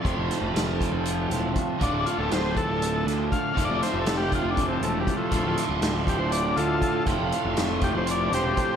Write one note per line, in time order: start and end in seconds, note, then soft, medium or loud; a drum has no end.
0.00 5.29 D2 medium
0.00 1.78 F2 medium
0.00 5.29 A2 medium
0.00 1.79 C3 medium
0.00 1.81 F3 medium
0.00 8.76 F4 medium
0.00 5.27 A5 medium
0.04 0.16 F1 medium
0.04 1.81 A3 medium
0.04 1.80 C4 medium
0.04 1.82 F4 medium
0.04 8.76 A4 medium
0.04 1.79 C5 medium
0.04 kick loud
0.04 closed hi-hat medium
0.18 0.29 F1 medium
0.31 snare soft
0.31 closed hi-hat medium
0.42 0.53 F1 medium
0.53 0.88 F1 medium
0.53 snare loud
0.53 closed hi-hat loud
0.81 kick medium
0.81 closed hi-hat medium
0.93 1.27 F1 medium
1.06 closed hi-hat loud
1.30 1.53 E1 medium
1.30 snare soft
1.30 closed hi-hat medium
1.56 kick medium
1.56 closed hi-hat medium
1.79 1.92 D1 medium
1.79 3.54 D2 medium
1.79 3.54 A2 loud
1.79 3.55 D3 medium
1.79 3.56 A3 medium
1.79 2.06 D4 loud
1.79 3.57 F4 medium
1.79 3.55 D5 medium
1.79 kick loud
1.79 closed hi-hat medium
1.92 2.04 D1 medium
2.06 2.18 F4 medium
2.06 closed hi-hat medium
2.18 2.30 D1 medium
2.18 2.31 A4 medium
2.31 2.65 D1 medium
2.31 2.57 C5 medium
2.31 snare loud
2.31 closed hi-hat loud
2.57 3.06 A4 loud
2.57 kick medium
2.57 closed hi-hat medium
2.69 3.02 D1 medium
2.82 closed hi-hat loud
3.06 3.29 D2 medium
3.06 snare soft
3.06 closed hi-hat medium
3.32 3.64 F5 loud
3.32 kick medium
3.32 closed hi-hat medium
3.54 3.69 F1 loud
3.54 5.29 F2 medium
3.54 5.30 C3 medium
3.54 5.32 F3 medium
3.54 5.33 A3 medium
3.54 5.31 C4 medium
3.54 5.34 F4 medium
3.54 kick loud
3.54 closed hi-hat medium
3.59 5.31 C5 medium
3.65 3.81 D5 loud
3.70 3.81 F1 medium
3.83 3.99 C5 medium
3.83 snare soft
3.83 closed hi-hat medium
3.94 4.05 F1 medium
4.02 4.16 A4 medium
4.06 4.40 F1 medium
4.06 snare loud
4.06 closed hi-hat medium
4.17 4.33 G4 medium
4.32 4.50 F4 medium
4.32 kick medium
4.32 closed hi-hat medium
4.44 4.78 F1 medium
4.50 4.66 D4 medium
4.57 kick loud
4.57 closed hi-hat medium
4.68 4.83 C4 medium
4.81 5.04 E1 medium
4.81 4.99 A3 loud
4.81 closed hi-hat medium
5.01 5.16 G3 medium
5.07 kick medium
5.07 closed hi-hat medium
5.17 5.63 F3 medium
5.17 5.65 A3 medium
5.31 5.44 D1 loud
5.31 8.76 D2 medium
5.31 7.05 D2 medium
5.31 8.76 A2 medium
5.31 7.05 A2 medium
5.31 7.06 D3 loud
5.31 7.08 A3 medium
5.31 7.09 F4 medium
5.31 7.05 D5 medium
5.31 8.76 A5 medium
5.31 kick loud
5.31 closed hi-hat medium
5.44 5.56 D1 medium
5.58 snare soft
5.58 closed hi-hat medium
5.69 5.81 D1 loud
5.81 6.15 D1 medium
5.81 snare loud
5.81 closed hi-hat loud
6.07 6.20 G4 loud
6.07 kick medium
6.07 closed hi-hat medium
6.18 6.52 D1 medium
6.18 6.31 C5 medium
6.32 6.56 D5 loud
6.32 closed hi-hat loud
6.57 6.79 D2 medium
6.57 7.03 F4 loud
6.57 7.06 A4 loud
6.57 closed hi-hat medium
6.82 kick medium
6.82 closed hi-hat medium
7.06 7.18 F1 loud
7.06 8.76 F2 medium
7.06 8.76 C3 medium
7.06 8.76 F3 medium
7.06 8.76 A3 medium
7.06 8.76 C4 loud
7.06 8.76 F4 medium
7.06 8.76 C5 medium
7.06 kick loud
7.06 closed hi-hat medium
7.20 7.31 F1 medium
7.32 closed hi-hat medium
7.45 7.56 F1 loud
7.57 7.91 F1 medium
7.57 snare loud
7.57 closed hi-hat medium
7.82 7.95 G4 loud
7.82 kick medium
7.82 closed hi-hat medium
7.95 8.28 F1 medium
7.95 8.08 C5 medium
8.07 8.33 D5 medium
8.07 closed hi-hat medium
8.32 8.54 E1 medium
8.32 8.76 G4 medium
8.32 8.76 C5 loud
8.32 snare soft
8.32 closed hi-hat medium
8.57 kick medium
8.57 closed hi-hat medium